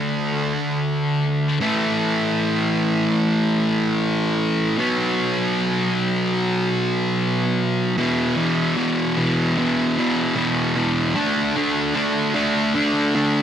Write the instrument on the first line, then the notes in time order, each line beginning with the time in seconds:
distorted electric guitar
Already playing: D3 A3 D4
1.61 A2 E3 A3
4.78 B2 F#3 B3
7.98 E2 B2 E3
8.37 E2 B2 E3
8.77 E2 B2 E3
9.17 E2 B2 E3
9.58 E2 B2 E3
9.98 E2 B2 E3
10.36 E2 B2 E3
10.76 E2 B2 E3
11.16 D3 A3 D4
11.56 D3 A3 D4
11.95 D3 A3 D4
12.35 D3 A3 D4
12.75 D3 A3 D4
13.15 D3 A3 D4